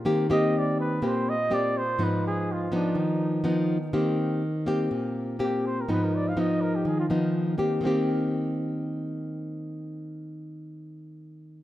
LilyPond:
<<
  \new Staff \with { instrumentName = "Flugelhorn" } { \time 4/4 \key ees \major \tempo 4 = 124 r8 ees''8 d''8 ces''8 c''8 ees''8 d''8 c''8 | ces''8 aes'8 f'8 d'8 ees'4 r4 | r2. g'8 c''16 bes'16 | ces''16 bes'16 d''16 f''16 ees''8 bes'16 g'16 aes'16 f'16 r4. |
r1 | r1 | }
  \new Staff \with { instrumentName = "Nylon-string guitar" } { \time 4/4 \key ees \major << { <bes c' g'>8 <bes c' g'>4. <bes c' g'>8 r8 <bes c' g'>8 r8 | <f ces' ees'>4. <f ces' ees'>4. <f ces' ees'>8 r8 | <bes c' g'>4 r8 <bes c' g'>4. <bes c' g'>4 | <f ces' ees'>4 <f ces' ees'>4. <f ces' ees'>4 <bes c' g'>8~ |
<bes c' g'>4 r2. | r1 | } \\ { ees2 bes,2 | aes,2 ees2 | ees2 bes,2 | aes,2 ees2 |
<ees bes c' g'>1~ | <ees bes c' g'>1 | } >> }
>>